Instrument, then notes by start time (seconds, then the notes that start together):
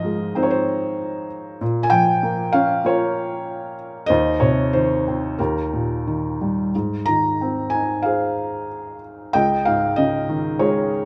felt piano
Already playing: G#2 D#3 F3 C5 D#5 F5
0.05 G#3
0.35 C4 D#4 C5
0.43 C#5
0.51 C5
1.61 A#2
1.83 G#5
1.90 F3 G5
2.23 A#3
2.53 C#4 F5
2.84 A#3 F4 C#5
4.06 D#2 C5 D#5
4.40 C3 C#5
4.73 D#3 C5
5.08 C4
5.38 D#2 G4 A#4
5.73 A#2
6.07 D#3
6.41 G3
6.75 G#2
7.06 D#3 A#5
7.41 C4
7.70 G#5
7.74 D#4
8.03 G#4 F5
8.07 C5
9.33 C#2 D#5 G5
9.65 G#2 F5
9.96 C#3 D#5
10.29 D#3
10.59 G#3 G#4 C#5